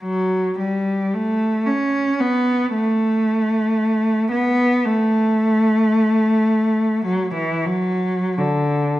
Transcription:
0.03 F#3
0.59 G3
1.14 A3
1.67 C#4
2.20 B3
2.74 A3
4.32 B3
4.86 A3
7.04 F#3
7.34 E3
7.66 F#3
8.38 D3

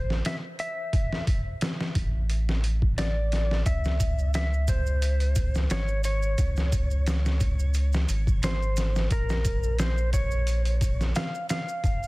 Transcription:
Already playing: A1 C5
0.10 snare
0.25 E5, snare, closed hi-hat
0.59 E5, closed hi-hat
0.93 kick, closed hi-hat
1.13 snare
1.27 kick, closed hi-hat
1.61 snare, closed hi-hat
1.81 snare
1.95 A1, kick, closed hi-hat
2.30 closed hi-hat
2.49 snare
2.64 closed hi-hat
2.82 kick
2.98 A1 D5, snare, closed hi-hat
3.32 snare, closed hi-hat
3.51 snare
3.66 C#2 E5, kick, closed hi-hat, maracas
3.85 snare, maracas
4.00 kick, closed hi-hat, maracas
4.19 maracas
4.34 E5, snare, closed hi-hat, maracas
4.53 maracas
4.68 C5, kick, closed hi-hat, maracas
4.86 maracas
5.02 closed hi-hat, maracas
5.20 closed hi-hat, maracas
5.36 kick, closed hi-hat, maracas
5.55 snare, maracas
5.70 G#1 C#5, snare, closed hi-hat, maracas
5.88 maracas
6.04 C#5, closed hi-hat, maracas
6.22 maracas
6.38 C#2, kick, closed hi-hat, maracas
6.56 snare, maracas
6.72 kick, closed hi-hat, maracas
6.91 maracas
7.07 snare, closed hi-hat, maracas
7.25 snare, maracas
7.41 kick, closed hi-hat, maracas
7.59 maracas
7.74 closed hi-hat, maracas
7.93 snare, maracas
8.09 G#1, closed hi-hat, maracas
8.27 kick, maracas
8.43 C5, snare, closed hi-hat, maracas
8.62 maracas
8.77 snare, closed hi-hat, maracas
8.96 snare, maracas
9.11 A#1 A#4, kick, closed hi-hat, maracas
9.29 snare, maracas
9.45 kick, closed hi-hat, maracas
9.63 maracas
9.79 C5, snare, closed hi-hat, maracas
9.98 maracas
10.13 C#5, kick, closed hi-hat, maracas
10.31 maracas
10.47 closed hi-hat, maracas
10.65 closed hi-hat, maracas
10.81 kick, closed hi-hat, maracas
11.01 snare, maracas
11.15 F5, snare, closed hi-hat, maracas
11.35 maracas
11.49 F5, snare, closed hi-hat, maracas
11.69 maracas
11.84 kick, closed hi-hat, maracas
12.03 maracas

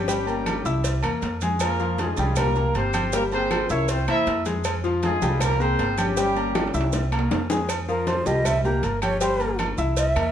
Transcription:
Already playing: G1 G3 C#4 G4
0.08 G3 G4 G5, cowbell, high conga, maracas
0.27 A#3 A#4 A#5, high conga, low agogo, maracas
0.46 cowbell, high conga, low agogo, claves, maracas
0.65 C2 E4 E5 E6, high conga, maracas
0.84 cowbell, high conga, low agogo, maracas
1.03 E2 A#3 A#4 A#5, cowbell, high conga, low agogo, claves, maracas
1.22 F2, cowbell, high conga, low timbale, low agogo, maracas
1.41 G#3 G#4 G#5, cowbell, high conga, maracas
1.60 A#3 F4 A#4, cowbell, high conga, low agogo, claves, maracas
1.79 F3 F4 F5, high conga, maracas
1.98 G#3 F4 G#4, cowbell, high conga, low agogo, maracas
2.17 C2 G3 G4 G5, high conga, low agogo, maracas
2.36 A#3 G4 A#4, cowbell, high conga, low conga, low agogo, claves, maracas
2.55 A#3 A#4 A#5, high conga, low conga, maracas
2.75 G1 C4 G4 C5, cowbell, high conga, low agogo, maracas
2.93 G4 G5 G6, cowbell, high conga, low agogo, claves, maracas
3.13 G3 A#3 G4 A#4 G5, cowbell, high conga, maracas
3.32 A#3 C4 G#4 A#4 C5 A#5, high conga, low agogo, maracas
3.51 cowbell, high conga, low agogo, claves, maracas
3.69 C2 C#4 E4 A#4 C#5 E5 E6, high conga, maracas
3.88 C4 G4 C5, cowbell, high conga, low agogo, maracas
4.07 E2 A#3 E4 A#4 C5 E5 A#5, cowbell, high conga, low agogo, claves, maracas
4.26 F2, cowbell, high conga, low timbale, low agogo, maracas
4.45 G#3 G#4 G#5, cowbell, high conga, maracas
4.64 cowbell, low agogo, claves, maracas
4.84 F3 F4 F5, maracas
5.03 G#3 F4 G#4, cowbell, high conga, low agogo, maracas
5.22 C2 G3 G4 G5, high conga, low agogo, maracas
5.41 A#3 G4 A#4, cowbell, high conga, low conga, low agogo, claves, maracas
5.60 A#3 C4 G#4 A#4 C5 A#5, high conga, maracas
5.79 G1, cowbell, high conga, low timbale, low agogo, maracas
5.98 G3 C#4 G4 G5 G6, cowbell, high conga, low agogo, claves, maracas
6.17 G3 G4 G5, cowbell, high conga, maracas
6.36 A#3 A#4 A#5, high conga, low agogo, maracas
6.55 cowbell, high bongo, high conga, high timbale, low agogo, claves, maracas
6.68 high timbale
6.74 C2 E4 E5 E6, high conga, maracas
6.81 high timbale
6.93 cowbell, low bongo, high conga, low timbale, low agogo, maracas
7.12 A#3 A#4 A#5, cowbell, high conga, low agogo, claves, maracas
7.19 low timbale
7.31 F2, cowbell, low bongo, low timbale, low agogo, maracas
7.50 G#3 G#4 G#5, cowbell, low bongo, high conga, maracas
7.57 low timbale
7.69 cowbell, high conga, low agogo, claves, maracas
7.88 F3 F4 A#4 F5, high conga, maracas
8.07 C5, cowbell, high conga, low agogo, maracas
8.26 C2 G3 G4 D#5 G5, high conga, low agogo, maracas
8.45 E5, cowbell, high conga, low conga, low agogo, claves, maracas
8.64 A#3 G4 A#4 A#5, high conga, low conga, maracas
8.83 G1 A#4, cowbell, high conga, low agogo, maracas
9.02 G4 C#5 G5 G6, cowbell, high conga, low agogo, claves, maracas
9.21 G3 G4 C5 G5, cowbell, high conga, maracas
9.39 A#3 A#4 A#5, high conga, low agogo, maracas
9.59 cowbell, high conga, low agogo, claves, maracas
9.78 C2 E4 E5 E6, high conga, maracas
9.97 E5, cowbell, high conga, low agogo, maracas
10.16 E2 A#3 A#4 A#5, cowbell, high conga, low agogo, claves, maracas

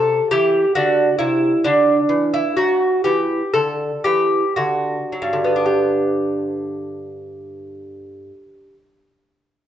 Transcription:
Already playing: C3 A4
0.31 E3 G4
0.75 D3 F#4
1.19 C3 E4
1.64 D3 D4
2.09 E3
2.34 E4
2.57 F#3 F#4
3.04 E3 G4
3.54 D3 A4
4.04 E3 G4
4.56 D3 F#4
5.12 F#3
5.22 G2
5.33 D3
5.44 B3
5.56 D4
5.66 G4

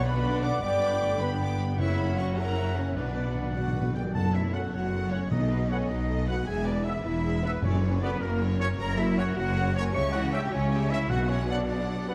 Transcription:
Already playing: B1 B2 D5 F#5
0.03 D3 B3 D4 B4 F#5 B5
0.24 D5
0.42 D5 F#5 D6
0.60 G1 G2 D3 B3 D5 G5 B5 D6
0.81 D4 B5
1.01 A3 D6
1.19 D3 B3 B4 G5 B5
1.41 D6
1.60 B5
1.78 F#1 F#2 C#3 B3 C#4 E4 C#5 E5 F#5 C#6
1.98 B5
2.17 F#4 F#5 C#6
2.36 C#3 E4 A#4 E5 F#5 A#5
2.57 E5
2.76 C#4 C#5 F#5
2.95 B1 B2 B3 D4 B4 D5 F#5
3.05 B2
3.13 B2 D5
3.19 B2
3.27 B2
3.35 B2 B4
3.42 B2
3.51 B2 D5
3.55 B2 F#4 F#5
3.66 B2
3.73 B2 B4
3.81 B2
3.89 B2
3.95 B2 G4 D5 G5
4.04 B2
4.13 F#1 F#2 F#3 A4 F#5 A5
4.34 A3 E4 F#4 C#5 E5
4.53 A2 F#3 C#4 F#4 A4 F#5
4.71 F#1 F#2 A3 F#4 C#5 F#5
4.92 F#3 A4 F#5
5.11 A2 A3 C#4 F#4 C#5 F#5
5.30 B1 B2 A3 D#4 A4 D#5
5.51 B3 F#4 B4
5.69 A2 A3 B3 C#4 A4 C#5 D#5 F#5
5.88 B1 B2 B3 D#4 F#4 B4 D#5
6.08 A3 A4 D#5
6.27 A2 B3 F#4 B4 F#5
6.47 E1 E2 G#3 G#4 E5 G#5
6.66 B3 D4 E4 B4 D5
6.84 G#2 G#3 B3 E4 G#4 E5
7.04 E1 E2 B3 E4 B4 E5
7.25 G#3 G#4 E5
7.43 G#2 B3 E4 B4 E5
7.62 F#1 F#2 D3 C#4 F#4 C#5 D5
7.82 F#3 D4 B4
8.02 F#2 D3 B3 F#4 B4 D5
8.20 F#1 F#2 A#3 F#4 A#4
8.40 F#3 A#4 C#5
8.59 F#2 A#3 C#4 F#4 A#4 C#5
8.78 F#1 F#2 F#3 A#4 C#5 A#5
8.98 A#3 E4 F#4 A#4 E5
9.16 F#2 F#3 C#4 F#4 A#4 C#5 F#5
9.35 F#1 F#2 A#3 F#4 A#4 F#5
9.56 F#3 A#4 C#5
9.74 F#2 A#3 C#4 F#4 A#4 C#5
9.93 C#2 C#3 G3 G4 C#5 E5 C#6
10.11 E3 E4 F#4 C#5 F#5
10.32 G2 G3 C#4 G4 E5 G5
10.51 C#2 C#3 E3 C#4 E4 C#5
10.71 G3 G4 E5
10.89 G2 E3 C#4 E4 C#5 E5
11.09 B1 B2 F#3 F#4 F#5
11.29 C#4 C#5
11.48 F#2 B3 D4 D5 F#5
11.68 F#3 D4 F#4 D5 F#5
11.98 G4
12.07 F#2 B3 B4 F#5

